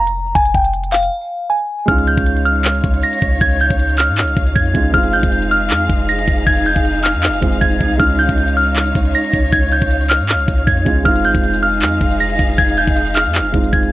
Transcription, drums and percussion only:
0.07 closed hi-hat
0.35 kick, closed hi-hat
0.45 closed hi-hat
0.54 kick, closed hi-hat
0.65 closed hi-hat
0.74 closed hi-hat
0.84 closed hi-hat
0.93 clap, closed hi-hat, open hi-hat
1.03 closed hi-hat
1.88 kick, closed hi-hat
1.98 closed hi-hat
2.07 closed hi-hat
2.17 kick, closed hi-hat
2.26 closed hi-hat
2.37 closed hi-hat
2.46 closed hi-hat
2.65 clap, closed hi-hat
2.75 closed hi-hat
2.84 kick, closed hi-hat
2.94 closed hi-hat
3.03 closed hi-hat
3.13 closed hi-hat
3.22 kick
3.41 kick, closed hi-hat
3.51 closed hi-hat
3.60 closed hi-hat
3.70 kick, closed hi-hat
3.79 closed hi-hat
3.89 closed hi-hat
3.98 clap, open hi-hat
4.18 clap, closed hi-hat
4.28 closed hi-hat
4.37 kick, closed hi-hat
4.47 closed hi-hat
4.56 kick, closed hi-hat
4.66 closed hi-hat
4.75 kick
4.94 kick, closed hi-hat
5.04 closed hi-hat
5.13 closed hi-hat
5.23 kick, closed hi-hat
5.32 closed hi-hat
5.42 closed hi-hat
5.51 closed hi-hat
5.70 clap, closed hi-hat
5.80 closed hi-hat
5.89 kick, closed hi-hat
6.00 closed hi-hat
6.09 closed hi-hat
6.19 closed hi-hat
6.28 kick
6.47 kick, closed hi-hat
6.57 closed hi-hat
6.66 closed hi-hat
6.76 kick, closed hi-hat
6.85 closed hi-hat
6.95 closed hi-hat
7.04 clap, closed hi-hat, open hi-hat
7.14 closed hi-hat
7.23 clap, closed hi-hat
7.33 closed hi-hat
7.42 kick, closed hi-hat
7.52 closed hi-hat
7.61 kick, closed hi-hat
7.72 closed hi-hat
7.81 kick
8.00 kick, closed hi-hat
8.10 closed hi-hat
8.19 closed hi-hat
8.29 kick, closed hi-hat
8.38 closed hi-hat
8.48 closed hi-hat
8.57 closed hi-hat
8.76 clap, closed hi-hat
8.86 closed hi-hat
8.95 kick, closed hi-hat
9.05 closed hi-hat
9.14 closed hi-hat
9.24 closed hi-hat
9.33 kick
9.53 kick, closed hi-hat
9.63 closed hi-hat
9.72 closed hi-hat
9.82 kick, closed hi-hat
9.91 closed hi-hat
10.01 closed hi-hat
10.10 clap, open hi-hat
10.29 clap, closed hi-hat
10.39 closed hi-hat
10.48 kick, closed hi-hat
10.58 closed hi-hat
10.67 kick, closed hi-hat
10.77 closed hi-hat
10.86 kick
11.05 kick, closed hi-hat
11.16 closed hi-hat
11.25 closed hi-hat
11.35 kick, closed hi-hat
11.44 closed hi-hat
11.54 closed hi-hat
11.63 closed hi-hat
11.82 clap, closed hi-hat
11.92 closed hi-hat
12.01 kick, closed hi-hat
12.11 closed hi-hat
12.20 closed hi-hat
12.30 closed hi-hat
12.39 kick
12.58 kick, closed hi-hat
12.68 closed hi-hat
12.77 closed hi-hat
12.88 kick, closed hi-hat
12.97 closed hi-hat
13.07 closed hi-hat
13.16 clap, closed hi-hat, open hi-hat
13.26 closed hi-hat
13.35 clap, closed hi-hat
13.45 closed hi-hat
13.54 kick, closed hi-hat
13.64 closed hi-hat
13.73 kick, closed hi-hat
13.83 closed hi-hat

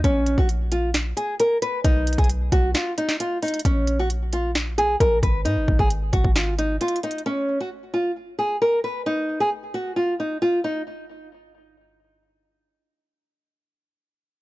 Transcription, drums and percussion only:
0.04 kick, closed hi-hat
0.26 closed hi-hat
0.38 kick
0.49 closed hi-hat
0.72 closed hi-hat
0.94 snare, closed hi-hat
1.17 closed hi-hat
1.40 closed hi-hat
1.62 closed hi-hat
1.85 kick, closed hi-hat
2.07 closed hi-hat
2.13 closed hi-hat
2.18 kick, closed hi-hat
2.24 closed hi-hat
2.29 closed hi-hat
2.52 kick, closed hi-hat
2.75 snare, closed hi-hat
2.98 closed hi-hat
3.09 snare
3.20 closed hi-hat
3.42 closed hi-hat, open hi-hat
3.48 closed hi-hat
3.54 closed hi-hat
3.59 closed hi-hat
3.65 kick, closed hi-hat
3.87 closed hi-hat
4.10 closed hi-hat
4.33 closed hi-hat
4.55 snare, closed hi-hat
4.78 closed hi-hat
5.00 kick, closed hi-hat
5.23 kick, closed hi-hat
5.46 closed hi-hat
5.68 kick
5.79 kick
5.90 closed hi-hat
6.13 kick, closed hi-hat
6.24 kick
6.36 snare, closed hi-hat
6.59 closed hi-hat
6.81 closed hi-hat
6.88 closed hi-hat
6.96 closed hi-hat
7.03 closed hi-hat
7.11 closed hi-hat
7.18 closed hi-hat

